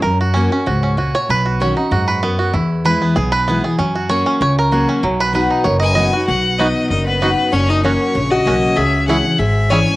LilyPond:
<<
  \new Staff \with { instrumentName = "Fiddle" } { \time 4/4 \key b \major \tempo 4 = 192 r1 | r1 | r1 | r1 |
r2 r8 gis''4. | fis''4 dis''4 dis''8 b'4. | cis''8 dis''8 cis''4. dis''4. | e''4 fis''4 e''4 gis''4 | }
  \new Staff \with { instrumentName = "Five-string banjo" } { \time 4/4 \key b \major << { ais'4 cis'4. r4 cis''8 | b'4 cis''8 r2 r8 | r4 b'4 gis'8 b'4 r8 | r4 cis''4 cis''8 ais'4 r8 |
r8 b'4. cis''8 dis''8 dis''4 | r4 <b dis' fis'>8 r4. <b dis' fis'>8 r8 | r4 <cis' fis'>8 r4. <cis' fis'>8 r8 | r4 <cis' e' gis'>8 r4. <cis' e' gis'>8 r8 | } \\ { r8 fis'4 cis'8 fis'8 cis'8 fis'4 | r8 fis'4 dis'8 fis'8 b'8 b8 fis'8 | e'4. b4. b8 gis'8 | cis'8 fis'4 cis'4. fis'8 cis'8 |
fis4 b'8 dis'4. r8 fis'8 | r1 | r1 | r1 | } >> }
  \new Staff \with { instrumentName = "Resonator guitar played with a steel bar" } { \time 4/4 \key b \major r1 | r1 | r1 | r1 |
r2 r8 b'4. | fis'4 dis'4 dis'8 b4. | cis'8 dis'8 cis'4. fis'4. | gis'4 gis'4 gis'4 cis''4 | }
  \new Staff \with { instrumentName = "Steel-string acoustic guitar" } { \time 4/4 \key b \major << { r4 <fis ais cis' fis'>8 <cis' fis'>8 r2 | r4 <b, dis cis' fis'>8 <cis' fis'>8 r2 | r4 <e gis b e'>4 r4 <e gis b e'>8 <b e'>8 | r4 <fis ais cis' gis'>4 r4 <fis ais cis' gis'>4 |
r4 <fis b dis' fis'>4 r4 <fis b dis' fis'>8 <dis' fis'>8 | r4 <fis b dis' fis'>4 r4 <fis b dis' fis'>4 | r4 <fis ais cis' fis'>4 r4 <fis ais cis' fis'>4 | r4 <e gis cis' e'>8 <cis' e'>8 r4 <e gis cis' e'>8 <cis' e'>8 | } \\ { fis,2 gis,4 ais,4 | b,2 gis,4 fis,4 | e,2 b,2 | fis2 cis2 |
b,2 fis,2 | b,2 fis,2 | fis,2 cis2 | cis2 gis,2 | } >> }
  \new Staff \with { instrumentName = "Upright bass" } { \clef bass \time 4/4 \key b \major fis,2 cis,2 | b,,2 fis,2 | e,2 b,,2 | fis,2 cis,2 |
b,,2 fis,,2 | b,,2 fis,,2 | fis,,2 ais,,4 b,,4 | cis,2 gis,,2 | }
>>